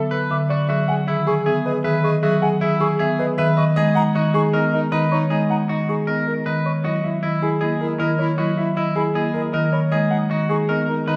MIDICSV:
0, 0, Header, 1, 6, 480
1, 0, Start_track
1, 0, Tempo, 384615
1, 861, Time_signature, 4, 2, 24, 8
1, 13933, End_track
2, 0, Start_track
2, 0, Title_t, "Flute"
2, 0, Program_c, 0, 73
2, 382, Note_on_c, 0, 86, 65
2, 472, Note_off_c, 0, 86, 0
2, 1107, Note_on_c, 0, 80, 83
2, 1195, Note_off_c, 0, 80, 0
2, 1586, Note_on_c, 0, 85, 80
2, 1675, Note_off_c, 0, 85, 0
2, 2063, Note_on_c, 0, 75, 76
2, 2152, Note_off_c, 0, 75, 0
2, 2545, Note_on_c, 0, 85, 80
2, 2634, Note_off_c, 0, 85, 0
2, 3023, Note_on_c, 0, 80, 87
2, 3112, Note_off_c, 0, 80, 0
2, 3500, Note_on_c, 0, 85, 85
2, 3590, Note_off_c, 0, 85, 0
2, 3982, Note_on_c, 0, 75, 80
2, 4072, Note_off_c, 0, 75, 0
2, 4463, Note_on_c, 0, 85, 76
2, 4552, Note_off_c, 0, 85, 0
2, 4943, Note_on_c, 0, 82, 108
2, 5032, Note_off_c, 0, 82, 0
2, 5423, Note_on_c, 0, 85, 99
2, 5513, Note_off_c, 0, 85, 0
2, 5906, Note_on_c, 0, 75, 81
2, 5995, Note_off_c, 0, 75, 0
2, 6382, Note_on_c, 0, 85, 67
2, 6472, Note_off_c, 0, 85, 0
2, 6868, Note_on_c, 0, 82, 79
2, 6956, Note_off_c, 0, 82, 0
2, 7347, Note_on_c, 0, 85, 70
2, 7436, Note_off_c, 0, 85, 0
2, 7826, Note_on_c, 0, 75, 64
2, 7915, Note_off_c, 0, 75, 0
2, 8307, Note_on_c, 0, 85, 59
2, 8395, Note_off_c, 0, 85, 0
2, 9265, Note_on_c, 0, 83, 73
2, 9354, Note_off_c, 0, 83, 0
2, 9745, Note_on_c, 0, 75, 70
2, 9834, Note_off_c, 0, 75, 0
2, 10230, Note_on_c, 0, 83, 65
2, 10319, Note_off_c, 0, 83, 0
2, 11187, Note_on_c, 0, 83, 78
2, 11276, Note_off_c, 0, 83, 0
2, 11668, Note_on_c, 0, 75, 78
2, 11756, Note_off_c, 0, 75, 0
2, 12147, Note_on_c, 0, 83, 75
2, 12236, Note_off_c, 0, 83, 0
2, 13105, Note_on_c, 0, 85, 87
2, 13194, Note_off_c, 0, 85, 0
2, 13586, Note_on_c, 0, 75, 66
2, 13675, Note_off_c, 0, 75, 0
2, 13933, End_track
3, 0, Start_track
3, 0, Title_t, "Grand piano"
3, 0, Program_c, 1, 0
3, 0, Note_on_c, 1, 76, 66
3, 143, Note_on_c, 1, 71, 60
3, 213, Note_off_c, 1, 76, 0
3, 382, Note_on_c, 1, 76, 76
3, 453, Note_off_c, 1, 71, 0
3, 617, Note_on_c, 1, 74, 64
3, 693, Note_off_c, 1, 76, 0
3, 857, Note_on_c, 1, 76, 89
3, 931, Note_off_c, 1, 74, 0
3, 1099, Note_on_c, 1, 78, 83
3, 1171, Note_off_c, 1, 76, 0
3, 1336, Note_on_c, 1, 76, 78
3, 1412, Note_off_c, 1, 78, 0
3, 1582, Note_on_c, 1, 68, 96
3, 1651, Note_off_c, 1, 76, 0
3, 1826, Note_on_c, 1, 76, 75
3, 1893, Note_off_c, 1, 68, 0
3, 2066, Note_on_c, 1, 71, 72
3, 2134, Note_off_c, 1, 76, 0
3, 2298, Note_on_c, 1, 76, 89
3, 2374, Note_off_c, 1, 71, 0
3, 2540, Note_on_c, 1, 75, 71
3, 2612, Note_off_c, 1, 76, 0
3, 2779, Note_on_c, 1, 76, 90
3, 2852, Note_off_c, 1, 75, 0
3, 3021, Note_on_c, 1, 78, 81
3, 3092, Note_off_c, 1, 76, 0
3, 3258, Note_on_c, 1, 76, 88
3, 3333, Note_off_c, 1, 78, 0
3, 3499, Note_on_c, 1, 68, 99
3, 3572, Note_off_c, 1, 76, 0
3, 3746, Note_on_c, 1, 76, 90
3, 3812, Note_off_c, 1, 68, 0
3, 3983, Note_on_c, 1, 71, 82
3, 4054, Note_off_c, 1, 76, 0
3, 4216, Note_on_c, 1, 76, 112
3, 4293, Note_off_c, 1, 71, 0
3, 4453, Note_on_c, 1, 75, 91
3, 4531, Note_off_c, 1, 76, 0
3, 4677, Note_off_c, 1, 75, 0
3, 4695, Note_on_c, 1, 75, 114
3, 4930, Note_on_c, 1, 78, 82
3, 5011, Note_off_c, 1, 75, 0
3, 5179, Note_on_c, 1, 75, 93
3, 5249, Note_off_c, 1, 78, 0
3, 5417, Note_on_c, 1, 68, 99
3, 5492, Note_off_c, 1, 75, 0
3, 5662, Note_on_c, 1, 75, 82
3, 5731, Note_off_c, 1, 68, 0
3, 5909, Note_on_c, 1, 70, 70
3, 5973, Note_off_c, 1, 75, 0
3, 6139, Note_on_c, 1, 75, 102
3, 6216, Note_off_c, 1, 70, 0
3, 6389, Note_on_c, 1, 73, 65
3, 6452, Note_off_c, 1, 75, 0
3, 6637, Note_on_c, 1, 75, 84
3, 6695, Note_off_c, 1, 73, 0
3, 6866, Note_on_c, 1, 78, 69
3, 6938, Note_off_c, 1, 75, 0
3, 7107, Note_on_c, 1, 75, 66
3, 7174, Note_off_c, 1, 78, 0
3, 7350, Note_on_c, 1, 68, 72
3, 7415, Note_off_c, 1, 75, 0
3, 7581, Note_on_c, 1, 75, 64
3, 7656, Note_off_c, 1, 68, 0
3, 7825, Note_on_c, 1, 70, 62
3, 7893, Note_off_c, 1, 75, 0
3, 8062, Note_on_c, 1, 75, 84
3, 8134, Note_off_c, 1, 70, 0
3, 8306, Note_on_c, 1, 73, 55
3, 8373, Note_off_c, 1, 75, 0
3, 8547, Note_on_c, 1, 75, 83
3, 8615, Note_off_c, 1, 73, 0
3, 8786, Note_on_c, 1, 76, 67
3, 8855, Note_off_c, 1, 75, 0
3, 9020, Note_on_c, 1, 75, 69
3, 9095, Note_off_c, 1, 76, 0
3, 9265, Note_on_c, 1, 68, 85
3, 9332, Note_off_c, 1, 75, 0
3, 9497, Note_on_c, 1, 75, 68
3, 9574, Note_off_c, 1, 68, 0
3, 9742, Note_on_c, 1, 70, 66
3, 9811, Note_off_c, 1, 75, 0
3, 9974, Note_on_c, 1, 75, 85
3, 10053, Note_off_c, 1, 70, 0
3, 10216, Note_on_c, 1, 73, 63
3, 10290, Note_off_c, 1, 75, 0
3, 10455, Note_on_c, 1, 75, 80
3, 10531, Note_off_c, 1, 73, 0
3, 10700, Note_on_c, 1, 76, 75
3, 10771, Note_off_c, 1, 75, 0
3, 10935, Note_on_c, 1, 75, 75
3, 11012, Note_off_c, 1, 76, 0
3, 11177, Note_on_c, 1, 68, 93
3, 11251, Note_off_c, 1, 75, 0
3, 11418, Note_on_c, 1, 75, 73
3, 11491, Note_off_c, 1, 68, 0
3, 11651, Note_on_c, 1, 70, 72
3, 11732, Note_off_c, 1, 75, 0
3, 11894, Note_on_c, 1, 75, 85
3, 11969, Note_off_c, 1, 70, 0
3, 12134, Note_on_c, 1, 73, 68
3, 12210, Note_off_c, 1, 75, 0
3, 12374, Note_on_c, 1, 75, 93
3, 12450, Note_off_c, 1, 73, 0
3, 12613, Note_on_c, 1, 78, 74
3, 12690, Note_off_c, 1, 75, 0
3, 12853, Note_on_c, 1, 75, 80
3, 12930, Note_off_c, 1, 78, 0
3, 13096, Note_on_c, 1, 68, 89
3, 13170, Note_off_c, 1, 75, 0
3, 13341, Note_on_c, 1, 75, 76
3, 13411, Note_off_c, 1, 68, 0
3, 13575, Note_on_c, 1, 70, 64
3, 13653, Note_off_c, 1, 75, 0
3, 13819, Note_on_c, 1, 75, 85
3, 13891, Note_off_c, 1, 70, 0
3, 13933, Note_off_c, 1, 75, 0
3, 13933, End_track
4, 0, Start_track
4, 0, Title_t, "Clean electric guitar"
4, 0, Program_c, 2, 27
4, 138, Note_on_c, 2, 71, 78
4, 452, Note_off_c, 2, 71, 0
4, 628, Note_on_c, 2, 66, 73
4, 854, Note_off_c, 2, 66, 0
4, 869, Note_on_c, 2, 66, 66
4, 1175, Note_off_c, 2, 66, 0
4, 1346, Note_on_c, 2, 64, 75
4, 1654, Note_off_c, 2, 64, 0
4, 1823, Note_on_c, 2, 68, 68
4, 2133, Note_off_c, 2, 68, 0
4, 2302, Note_on_c, 2, 71, 85
4, 2613, Note_off_c, 2, 71, 0
4, 2782, Note_on_c, 2, 66, 78
4, 3093, Note_off_c, 2, 66, 0
4, 3261, Note_on_c, 2, 64, 83
4, 3573, Note_off_c, 2, 64, 0
4, 3737, Note_on_c, 2, 68, 86
4, 4051, Note_off_c, 2, 68, 0
4, 4225, Note_on_c, 2, 71, 96
4, 4534, Note_off_c, 2, 71, 0
4, 4708, Note_on_c, 2, 68, 78
4, 5015, Note_off_c, 2, 68, 0
4, 5186, Note_on_c, 2, 66, 76
4, 5494, Note_off_c, 2, 66, 0
4, 5659, Note_on_c, 2, 70, 78
4, 5972, Note_off_c, 2, 70, 0
4, 6141, Note_on_c, 2, 71, 78
4, 6453, Note_off_c, 2, 71, 0
4, 6619, Note_on_c, 2, 68, 66
4, 6932, Note_off_c, 2, 68, 0
4, 7105, Note_on_c, 2, 66, 65
4, 7414, Note_off_c, 2, 66, 0
4, 7578, Note_on_c, 2, 70, 62
4, 7892, Note_off_c, 2, 70, 0
4, 8062, Note_on_c, 2, 71, 75
4, 8373, Note_off_c, 2, 71, 0
4, 8543, Note_on_c, 2, 66, 65
4, 8853, Note_off_c, 2, 66, 0
4, 9020, Note_on_c, 2, 64, 66
4, 9333, Note_off_c, 2, 64, 0
4, 9495, Note_on_c, 2, 68, 66
4, 9811, Note_off_c, 2, 68, 0
4, 9979, Note_on_c, 2, 70, 72
4, 10292, Note_off_c, 2, 70, 0
4, 10458, Note_on_c, 2, 66, 68
4, 10772, Note_off_c, 2, 66, 0
4, 10944, Note_on_c, 2, 64, 66
4, 11254, Note_off_c, 2, 64, 0
4, 11424, Note_on_c, 2, 68, 77
4, 11734, Note_off_c, 2, 68, 0
4, 11904, Note_on_c, 2, 70, 73
4, 12214, Note_off_c, 2, 70, 0
4, 12381, Note_on_c, 2, 68, 68
4, 12693, Note_off_c, 2, 68, 0
4, 12863, Note_on_c, 2, 66, 72
4, 13174, Note_off_c, 2, 66, 0
4, 13339, Note_on_c, 2, 70, 70
4, 13652, Note_off_c, 2, 70, 0
4, 13823, Note_on_c, 2, 71, 80
4, 13933, Note_off_c, 2, 71, 0
4, 13933, End_track
5, 0, Start_track
5, 0, Title_t, "Clarinet"
5, 0, Program_c, 3, 71
5, 138, Note_on_c, 3, 69, 41
5, 307, Note_off_c, 3, 69, 0
5, 381, Note_on_c, 3, 69, 34
5, 549, Note_off_c, 3, 69, 0
5, 864, Note_on_c, 3, 68, 42
5, 1031, Note_off_c, 3, 68, 0
5, 1102, Note_on_c, 3, 68, 46
5, 1270, Note_off_c, 3, 68, 0
5, 1345, Note_on_c, 3, 68, 55
5, 1511, Note_off_c, 3, 68, 0
5, 1588, Note_on_c, 3, 68, 71
5, 1753, Note_off_c, 3, 68, 0
5, 1829, Note_on_c, 3, 68, 76
5, 1994, Note_off_c, 3, 68, 0
5, 2063, Note_on_c, 3, 68, 78
5, 2230, Note_off_c, 3, 68, 0
5, 2302, Note_on_c, 3, 68, 82
5, 2469, Note_off_c, 3, 68, 0
5, 2538, Note_on_c, 3, 68, 88
5, 2707, Note_off_c, 3, 68, 0
5, 2777, Note_on_c, 3, 68, 84
5, 2946, Note_off_c, 3, 68, 0
5, 3022, Note_on_c, 3, 68, 75
5, 3190, Note_off_c, 3, 68, 0
5, 3263, Note_on_c, 3, 68, 72
5, 3430, Note_off_c, 3, 68, 0
5, 3496, Note_on_c, 3, 68, 73
5, 3666, Note_off_c, 3, 68, 0
5, 3739, Note_on_c, 3, 68, 65
5, 3908, Note_off_c, 3, 68, 0
5, 3980, Note_on_c, 3, 68, 52
5, 4148, Note_off_c, 3, 68, 0
5, 4229, Note_on_c, 3, 68, 51
5, 4394, Note_off_c, 3, 68, 0
5, 4708, Note_on_c, 3, 63, 46
5, 4874, Note_off_c, 3, 63, 0
5, 4947, Note_on_c, 3, 63, 57
5, 5113, Note_off_c, 3, 63, 0
5, 5192, Note_on_c, 3, 63, 67
5, 5356, Note_off_c, 3, 63, 0
5, 5424, Note_on_c, 3, 63, 79
5, 5591, Note_off_c, 3, 63, 0
5, 5662, Note_on_c, 3, 63, 82
5, 5830, Note_off_c, 3, 63, 0
5, 5902, Note_on_c, 3, 63, 83
5, 6070, Note_off_c, 3, 63, 0
5, 6143, Note_on_c, 3, 63, 90
5, 6310, Note_off_c, 3, 63, 0
5, 6382, Note_on_c, 3, 63, 95
5, 6549, Note_off_c, 3, 63, 0
5, 6620, Note_on_c, 3, 63, 83
5, 6788, Note_off_c, 3, 63, 0
5, 6861, Note_on_c, 3, 63, 69
5, 7029, Note_off_c, 3, 63, 0
5, 7106, Note_on_c, 3, 63, 66
5, 7272, Note_off_c, 3, 63, 0
5, 7340, Note_on_c, 3, 63, 59
5, 7508, Note_off_c, 3, 63, 0
5, 7578, Note_on_c, 3, 63, 53
5, 7747, Note_off_c, 3, 63, 0
5, 7828, Note_on_c, 3, 63, 41
5, 7993, Note_off_c, 3, 63, 0
5, 8061, Note_on_c, 3, 63, 34
5, 8229, Note_off_c, 3, 63, 0
5, 8543, Note_on_c, 3, 64, 38
5, 8710, Note_off_c, 3, 64, 0
5, 8783, Note_on_c, 3, 64, 45
5, 8950, Note_off_c, 3, 64, 0
5, 9025, Note_on_c, 3, 64, 47
5, 9192, Note_off_c, 3, 64, 0
5, 9263, Note_on_c, 3, 64, 63
5, 9430, Note_off_c, 3, 64, 0
5, 9501, Note_on_c, 3, 64, 64
5, 9669, Note_off_c, 3, 64, 0
5, 9740, Note_on_c, 3, 64, 72
5, 9909, Note_off_c, 3, 64, 0
5, 9982, Note_on_c, 3, 64, 83
5, 10149, Note_off_c, 3, 64, 0
5, 10218, Note_on_c, 3, 64, 90
5, 10387, Note_off_c, 3, 64, 0
5, 10461, Note_on_c, 3, 64, 75
5, 10629, Note_off_c, 3, 64, 0
5, 10696, Note_on_c, 3, 64, 75
5, 10865, Note_off_c, 3, 64, 0
5, 10938, Note_on_c, 3, 64, 59
5, 11107, Note_off_c, 3, 64, 0
5, 11176, Note_on_c, 3, 64, 65
5, 11345, Note_off_c, 3, 64, 0
5, 11416, Note_on_c, 3, 64, 64
5, 11585, Note_off_c, 3, 64, 0
5, 11662, Note_on_c, 3, 64, 48
5, 11829, Note_off_c, 3, 64, 0
5, 11896, Note_on_c, 3, 64, 45
5, 12066, Note_off_c, 3, 64, 0
5, 12383, Note_on_c, 3, 63, 41
5, 12550, Note_off_c, 3, 63, 0
5, 12624, Note_on_c, 3, 63, 53
5, 12791, Note_off_c, 3, 63, 0
5, 12871, Note_on_c, 3, 63, 55
5, 13035, Note_off_c, 3, 63, 0
5, 13113, Note_on_c, 3, 63, 70
5, 13277, Note_off_c, 3, 63, 0
5, 13344, Note_on_c, 3, 63, 74
5, 13511, Note_off_c, 3, 63, 0
5, 13582, Note_on_c, 3, 63, 80
5, 13750, Note_off_c, 3, 63, 0
5, 13821, Note_on_c, 3, 63, 83
5, 13933, Note_off_c, 3, 63, 0
5, 13933, End_track
6, 0, Start_track
6, 0, Title_t, "Marimba"
6, 0, Program_c, 4, 12
6, 0, Note_on_c, 4, 59, 58
6, 212, Note_off_c, 4, 59, 0
6, 379, Note_on_c, 4, 50, 85
6, 692, Note_off_c, 4, 50, 0
6, 862, Note_on_c, 4, 54, 75
6, 1173, Note_off_c, 4, 54, 0
6, 1342, Note_on_c, 4, 51, 61
6, 1653, Note_off_c, 4, 51, 0
6, 1817, Note_on_c, 4, 59, 72
6, 2131, Note_off_c, 4, 59, 0
6, 2301, Note_on_c, 4, 51, 94
6, 2613, Note_off_c, 4, 51, 0
6, 2781, Note_on_c, 4, 54, 92
6, 3093, Note_off_c, 4, 54, 0
6, 3256, Note_on_c, 4, 51, 67
6, 3571, Note_off_c, 4, 51, 0
6, 3739, Note_on_c, 4, 59, 78
6, 4052, Note_off_c, 4, 59, 0
6, 4222, Note_on_c, 4, 51, 114
6, 4533, Note_off_c, 4, 51, 0
6, 4705, Note_on_c, 4, 56, 97
6, 5014, Note_off_c, 4, 56, 0
6, 5184, Note_on_c, 4, 51, 79
6, 5494, Note_off_c, 4, 51, 0
6, 5664, Note_on_c, 4, 59, 72
6, 5974, Note_off_c, 4, 59, 0
6, 6139, Note_on_c, 4, 51, 92
6, 6452, Note_off_c, 4, 51, 0
6, 6623, Note_on_c, 4, 56, 80
6, 6933, Note_off_c, 4, 56, 0
6, 7103, Note_on_c, 4, 51, 59
6, 7414, Note_off_c, 4, 51, 0
6, 7583, Note_on_c, 4, 59, 63
6, 7894, Note_off_c, 4, 59, 0
6, 8063, Note_on_c, 4, 51, 80
6, 8373, Note_off_c, 4, 51, 0
6, 8542, Note_on_c, 4, 54, 72
6, 8853, Note_off_c, 4, 54, 0
6, 9025, Note_on_c, 4, 51, 66
6, 9334, Note_off_c, 4, 51, 0
6, 9499, Note_on_c, 4, 58, 65
6, 9812, Note_off_c, 4, 58, 0
6, 9981, Note_on_c, 4, 51, 83
6, 10293, Note_off_c, 4, 51, 0
6, 10464, Note_on_c, 4, 54, 85
6, 10774, Note_off_c, 4, 54, 0
6, 10942, Note_on_c, 4, 51, 65
6, 11253, Note_off_c, 4, 51, 0
6, 11424, Note_on_c, 4, 58, 68
6, 11734, Note_off_c, 4, 58, 0
6, 11902, Note_on_c, 4, 51, 102
6, 12213, Note_off_c, 4, 51, 0
6, 12381, Note_on_c, 4, 56, 88
6, 12693, Note_off_c, 4, 56, 0
6, 12859, Note_on_c, 4, 51, 67
6, 13172, Note_off_c, 4, 51, 0
6, 13339, Note_on_c, 4, 59, 70
6, 13652, Note_off_c, 4, 59, 0
6, 13813, Note_on_c, 4, 51, 87
6, 13933, Note_off_c, 4, 51, 0
6, 13933, End_track
0, 0, End_of_file